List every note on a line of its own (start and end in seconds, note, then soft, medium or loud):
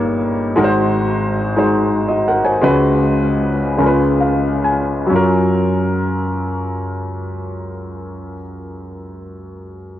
0.00 0.52 G1 medium
0.00 0.52 G2 medium
0.00 0.57 A#3 medium
0.00 0.57 D#4 medium
0.00 0.58 G4 medium
0.00 0.57 C#5 medium
0.56 2.59 G#1 medium
0.56 2.59 G#2 medium
0.56 1.31 G#3 medium
0.56 1.32 D#4 medium
0.56 1.32 F#4 medium
0.56 0.64 A#4 medium
0.64 1.36 C5 medium
1.56 2.36 G#3 medium
1.56 2.36 D#4 medium
1.56 1.92 F#4 medium
1.56 1.92 C5 medium
2.09 2.26 F#4 soft
2.09 2.25 D#5 medium
2.28 2.45 A#4 soft
2.28 2.44 F#5 medium
2.45 2.80 C5 soft
2.45 2.79 G#5 medium
2.62 3.75 C#2 medium
2.62 3.75 C#3 medium
2.62 3.49 G#3 medium
2.62 3.49 C#4 medium
2.62 3.50 F#4 medium
2.62 3.50 B4 medium
3.77 5.08 C#2 medium
3.77 5.08 C#3 medium
3.77 4.77 G#3 medium
3.77 4.77 C#4 medium
3.77 4.77 F4 medium
3.77 3.87 A#4 medium
3.86 4.81 B4 medium
4.20 4.62 F5 medium
4.64 5.08 G#5 medium
5.07 8.32 F#3 medium
5.07 8.36 C#4 medium
5.11 8.37 F#2 medium
5.11 8.39 F4 medium
5.16 8.41 A#4 medium